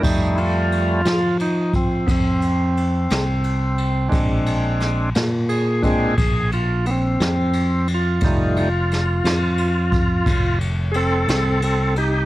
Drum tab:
CC |x-----------|------------|------------|
RD |-xxxxxxxxxxx|xxxxxxxxxxxx|xxxxxxxxxxxx|
SD |---o-----o--|--oo-----o--|--oo-----o--|
BD |o----oo-----|o----oo-----|o----oo-----|